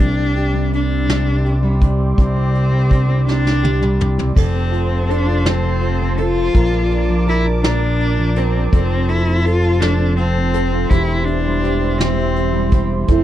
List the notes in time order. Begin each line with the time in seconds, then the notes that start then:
Already playing: C4 D4 G4
0.00 C2 C3 G4 D5 C6 D6, kick
0.18 D4
0.36 G4, closed hi-hat
0.53 G3
0.72 D4, closed hi-hat
0.90 C4
1.08 C3, snare, closed hi-hat
1.27 D4
1.45 G4, closed hi-hat
1.63 G3
1.80 D4, kick, closed hi-hat
1.99 C4
2.18 C2 C3 C4, kick, closed hi-hat
2.35 D4
2.54 G4, closed hi-hat
2.73 G3
2.91 D4, kick, closed hi-hat
3.09 C4
3.27 C3 D4, snare
3.45 D4, snare
3.63 G4, high tom
3.82 G3, mid tom
4.00 D4, mid tom
4.18 C4, floor tom
4.35 F1 F3 C4 A4 C5 A5 C6, kick, crash
4.54 C4
4.72 F4, closed hi-hat
4.90 C4
5.09 D4 A4, closed hi-hat
5.26 F4
5.45 F3 C4 A4, snare, closed hi-hat
5.63 C4
5.81 F4, closed hi-hat
6.00 C4
6.18 F4 A4, closed hi-hat
6.36 F4
6.55 A#1 A#2 A#4 D5 D6, kick, closed hi-hat
6.72 A#3
6.91 D4, closed hi-hat
7.09 F3
7.27 E4 A#4, closed hi-hat
7.45 D4
7.63 A#2 D4 A#4, snare, closed hi-hat
7.81 A#3
7.99 D4, closed hi-hat
8.18 F3
8.36 C4 A#4, closed hi-hat
8.55 D4
8.73 F1 F3 C4 A4 C5 A5 C6, kick, closed hi-hat
8.91 C4
9.09 E4, closed hi-hat
9.27 C4
9.45 F4 A4, closed hi-hat
9.63 F4
9.81 F3 D4 A4, snare, closed hi-hat
10.00 C4
10.16 C4 F4, closed hi-hat
10.36 C4
10.54 A4, closed hi-hat
10.73 F4
10.90 E1 E3 E4 G4 E5, kick, closed hi-hat
11.09 C4
11.25 D4 E4, closed hi-hat
11.45 G3
11.64 G4, closed hi-hat
11.81 E4
11.99 E3 C4 G4, snare, closed hi-hat
12.18 C4
12.36 E4, closed hi-hat
12.53 G3
12.71 G4, kick, closed hi-hat
12.90 E4
13.08 F1 F3 C4 E4 A4 A5, kick, closed hi-hat